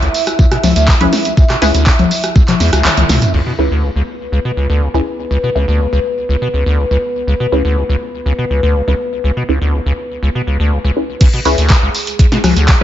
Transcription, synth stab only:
1.01 C#4 E4 G#4 B4
1.62 C#4 E4 G#4 B4
3.59 C#4 E4 G#4 B4
4.94 C#4 E4 G#4 B4
5.55 C#4 E4 G#4 B4
7.52 C#4 E4 G#4 B4
8.88 C#4 E4 G#4 B4
9.49 C#4 E4 G#4 B4
10.96 C#4 E4 G#4 B4
11.45 C#4 E4 G#4 B4

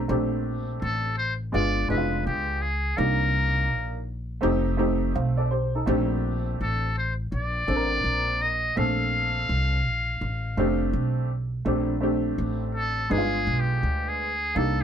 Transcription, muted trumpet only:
0.82 A4
1.18 C5
1.54 D5
1.90 B4
2.26 G4
2.62 G#4
2.98 A#4
6.62 A4
6.98 C5
7.33 D5
8.42 D#5
8.78 F5
12.75 A4
13.11 G#4
13.60 G4
14.08 G#4
14.57 A4

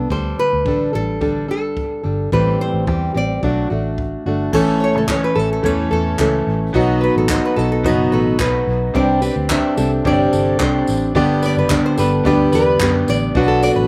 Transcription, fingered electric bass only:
0.10 D2
0.53 D2
0.66 A1
0.95 A1
1.50 G1
2.05 G1
2.32 A1
2.74 A1
2.88 E2
3.15 A1
3.43 B1
3.71 A1
4.26 G1
4.53 A1
4.95 C#2
5.36 A1
5.64 E2
5.91 E2
6.19 C#2
6.47 A1
6.74 B1
7.16 A1
7.57 B1
7.85 F#1
8.12 A1
8.40 B1
8.67 B1
8.95 C2
9.36 D2
9.78 C2
10.05 G1
10.33 G1
10.60 C2
10.89 A1
11.15 G1
11.56 F#1
11.98 G1
12.25 D2
12.53 E2
12.80 F#2
13.08 A1
13.35 B1
13.77 A1

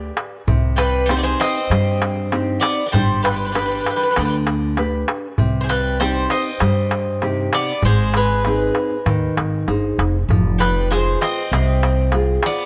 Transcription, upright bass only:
0.47 C2
1.70 G2
2.94 G1
4.17 D2
5.39 C2
6.61 G2
7.83 G#1
9.06 D#2
9.37 G#1
9.68 G1
9.98 F1
10.29 F1
11.52 C2

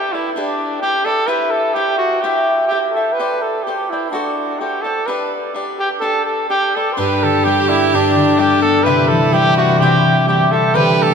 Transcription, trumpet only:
Already playing: G4
0.13 E4
0.32 D4 E4
0.81 G4
1.05 A4
1.27 B4
1.50 A4
1.73 G4
1.98 F#4
2.21 G4
2.67 G4
2.92 A4
3.13 B4
3.42 A4
3.63 G4
3.90 E4
4.10 D4
4.59 G4
4.82 A4
5.07 B4
5.79 G4
6.00 A4
6.26 A4
6.49 G4
6.75 A4
6.92 C5
6.97 B4
7.23 A4
7.44 G4
7.69 E4
7.95 D4
8.40 G4
8.62 A4
8.83 B4
9.08 A4
9.33 G4
9.57 F#4
9.79 G4
10.28 G4
10.51 A4
10.75 B4
11.02 A4

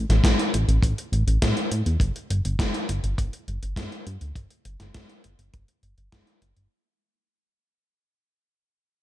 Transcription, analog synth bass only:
0.09 A1
0.24 A1
0.54 A1
0.68 A1
0.82 A1
1.12 A1
1.27 A1
1.42 A2
1.71 A2
1.86 E2
2.00 G1
2.30 G1
2.45 G1
2.59 G1
2.89 G1
3.04 G1
3.18 G1
3.48 G1
3.63 G1
3.76 G2
4.07 G2
4.21 D2
4.36 G1
4.65 G1
4.80 G1
4.95 G1
5.24 G1
5.39 G1
5.54 G1
5.83 G1
5.98 G1
6.12 G1
6.42 G1
6.56 G1

